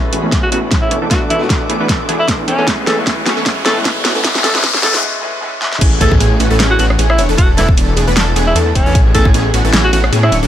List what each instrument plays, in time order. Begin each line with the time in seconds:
Already playing: detuned saw bass A1, supersaw synth E3 A3 B3 C#4 G#4, grand piano G#3 B3 C#4 E4, string section G#4 C#5 B5, riser
0.12 detuned saw bass A1, supersaw synth E3 A3 B3 C#4 F#4, closed hi-hat
0.23 detuned saw bass A1, supersaw synth E3 A3 B3 C#4 A4
0.32 supersaw synth E3 A3 B3 C#4 G#4, kick, snare, closed hi-hat
0.43 alto saxophone F#4
0.52 detuned saw bass A1, supersaw synth E3 A3 B3 C#4 F#4, alto saxophone F#4, closed hi-hat
0.71 detuned saw bass A2, supersaw synth E3 A3 B3 C#4 G#4, kick, snare, closed hi-hat
0.82 alto saxophone E4
0.91 detuned saw bass E1, supersaw synth E3 A3 B3 D4 C#5, string section A4 E5 D6, closed hi-hat
1.02 detuned saw bass E1, supersaw synth E3 A3 B3 D4 A4
1.10 detuned saw bass E1, supersaw synth E3 A3 B3 D4 A4, grand piano A3 B3 D4 F#4, alto saxophone F#4, kick, snare, closed hi-hat
1.30 detuned saw bass E1, supersaw synth E3 A3 B3 D4 A4, alto saxophone E4, closed hi-hat
1.39 grand piano A3 B3 D4
1.43 grand piano F#4
1.50 detuned saw bass E1, supersaw synth E3 A3 B3 D4 A4, kick, snare, closed hi-hat
1.69 detuned saw bass E1, supersaw synth E3 A3 B3 D4 G#4, closed hi-hat
1.80 detuned saw bass E1, supersaw synth E3 A3 B3 D4 B4
1.89 supersaw synth E3 A3 B3 D4 A4, kick, snare, closed hi-hat
2.08 detuned saw bass E1, supersaw synth E3 A3 B3 D4 G#4, closed hi-hat
2.19 alto saxophone E4
2.28 detuned saw bass E2, supersaw synth E3 A3 B3 D4 A4, kick, snare, closed hi-hat
2.48 detuned saw bass E1, supersaw synth E3 A3 B3 D4 C#5, alto saxophone C#4, closed hi-hat
2.58 detuned saw bass E2, supersaw synth E3 A3 B3 D4 A4
2.67 grand piano G#3 B3 C#4 E4, supersaw synth C#4, string section B4 G#5 C#6, kick, snare, closed hi-hat
2.87 detuned saw bass A1, supersaw synth E3 A3 B3 C#4 G#4, alto saxophone A4, snare, closed hi-hat
2.96 grand piano G#3 B3 C#4 E4
3.07 detuned saw bass A1, supersaw synth E3 A3 B3 C#4 G#4, kick, snare, closed hi-hat
3.26 detuned saw bass A1, supersaw synth E3 A3 B3 C#4 F#4, snare, closed hi-hat
3.37 detuned saw bass A1, supersaw synth E3 A3 B3 C#4 A4
3.45 detuned saw bass A1, supersaw synth E3 A3 B3 C#4 G#4, grand piano G#3 B3 C#4 E4, kick, snare, closed hi-hat
3.65 detuned saw bass A2, supersaw synth E3 A3 B3 C#4 G#4, alto saxophone A4, snare, closed hi-hat
3.74 grand piano G#3 B3 C#4 E4
3.85 detuned saw bass A1, supersaw synth E3 A3 B3 C#4 G#4, kick, snare, closed hi-hat
4.04 detuned saw bass D1, supersaw synth E3 A3 B3 C#4 F#4, string section C#4 F#5 D6, snare, closed hi-hat
4.15 detuned saw bass D1, supersaw synth E3 A3 B3 C#4 A4
4.23 supersaw synth E3 A3 B3 C#4 G#4, grand piano G#3 B3 C#4 E4, kick, snare, closed hi-hat
4.35 snare
4.44 detuned saw bass D1, supersaw synth E3 A3 B3 C#4 G#4, alto saxophone A4, snare, closed hi-hat
4.53 grand piano G#3 B3 C#4, snare
4.57 grand piano E4
4.63 detuned saw bass D1, supersaw synth E3 A3 B3 C#4 G#4, grand piano G#3 B3 C#4 E4, kick, snare, closed hi-hat
4.74 snare
4.83 detuned saw bass D1, supersaw synth E3 A3 B3 C#4 G#4, alto saxophone A4, snare, closed hi-hat
4.92 grand piano G#3 B3 C#4, snare
4.96 grand piano E4
5.02 grand piano G#3 B3 C#4 E4
5.21 grand piano G#3 B3 C#4 E4
5.41 grand piano G#3 B3 C#4 E4
5.61 grand piano G#3 B3 C#4 E4, snare
5.72 snare
5.81 detuned saw bass A1, supersaw synth E3 A3 B3 C#4 G#4, digital synth lead G#4, kick, closed hi-hat, crash
6.01 detuned saw bass A1, supersaw synth E3 A3 B3 C#4 G#4, digital synth lead G#4, alto saxophone A4, kick, closed hi-hat
6.12 kick
6.20 detuned saw bass A1, supersaw synth E3 A3 B3 C#4 G#4, digital synth lead G#4, closed hi-hat
6.40 detuned saw bass A1, supersaw synth E3 A3 B3 C#4 F#4, digital synth lead F#4, closed hi-hat
6.51 detuned saw bass A1, supersaw synth E3 A3 B3 C#4 A4, digital synth lead A4
6.59 detuned saw bass A1, supersaw synth E3 A3 B3 C#4 G#4, digital synth lead G#4, snare, closed hi-hat
6.71 alto saxophone F#4
6.79 detuned saw bass A1, supersaw synth E3 A3 B3 C#4 F#4, digital synth lead F#4, alto saxophone F#4, closed hi-hat
6.90 cross-stick
6.99 detuned saw bass A1, supersaw synth E3 A3 B3 C#4 G#4, digital synth lead G#4, closed hi-hat
7.10 alto saxophone E4, cross-stick
7.18 detuned saw bass E1, supersaw synth E3 A3 B3 D4 C#5, digital synth lead C#5, closed hi-hat
7.29 detuned saw bass E1, supersaw synth E3 A3 B3 D4 A4, digital synth lead A4
7.38 detuned saw bass E1, supersaw synth E3 A3 B3 D4 A4, alto saxophone F#4, digital synth lead A4, kick, closed hi-hat
7.57 detuned saw bass E1, supersaw synth E3 A3 B3 D4 A4, alto saxophone E4, digital synth lead A4, snare, closed hi-hat
7.69 kick
7.77 detuned saw bass E1, supersaw synth E3 A3 B3 D4 A4, digital synth lead A4, closed hi-hat
7.96 detuned saw bass E1, supersaw synth E3 A3 B3 D4 G#4, digital synth lead G#4, closed hi-hat
8.07 detuned saw bass E1, supersaw synth E3 A3 B3 D4 B4, digital synth lead B4
8.16 detuned saw bass E1, supersaw synth E3 A3 B3 D4 A4, digital synth lead A4, snare, closed hi-hat
8.36 detuned saw bass E1, supersaw synth E3 A3 B3 D4 G#4, digital synth lead G#4, closed hi-hat
8.47 alto saxophone E4
8.55 detuned saw bass E2, supersaw synth E3 A3 B3 D4 A4, digital synth lead A4, closed hi-hat
8.75 detuned saw bass E1, supersaw synth E3 A3 B3 D4 C#5, alto saxophone C#4, digital synth lead C#5, kick, closed hi-hat
8.86 detuned saw bass E2, supersaw synth E3 A3 B3 D4 A4, digital synth lead A4
8.95 detuned saw bass A1, supersaw synth E3 A3 B3 C#4 G#4, digital synth lead G#4, kick, closed hi-hat
9.14 detuned saw bass A1, supersaw synth E3 A3 B3 C#4 G#4, digital synth lead G#4, alto saxophone A4, kick, closed hi-hat
9.25 kick
9.34 detuned saw bass A1, supersaw synth E3 A3 B3 C#4 G#4, digital synth lead G#4, closed hi-hat
9.54 detuned saw bass A1, supersaw synth E3 A3 B3 C#4 F#4, digital synth lead F#4, closed hi-hat
9.64 detuned saw bass A1, supersaw synth E3 A3 B3 C#4 A4, digital synth lead A4
9.73 detuned saw bass A1, supersaw synth E3 A3 B3 C#4 G#4, digital synth lead G#4, snare, closed hi-hat
9.84 alto saxophone F#4
9.93 detuned saw bass A1, supersaw synth E3 A3 B3 C#4 F#4, digital synth lead F#4, alto saxophone F#4, closed hi-hat
10.04 cross-stick
10.12 detuned saw bass A2, supersaw synth E3 A3 B3 C#4 G#4, digital synth lead G#4, closed hi-hat
10.23 alto saxophone E4, cross-stick
10.32 detuned saw bass D1, supersaw synth F#3 A3 C#4 D4 C#5, digital synth lead C#5, closed hi-hat
10.43 detuned saw bass D1, supersaw synth F#3 A3 C#4 D4 A4, digital synth lead A4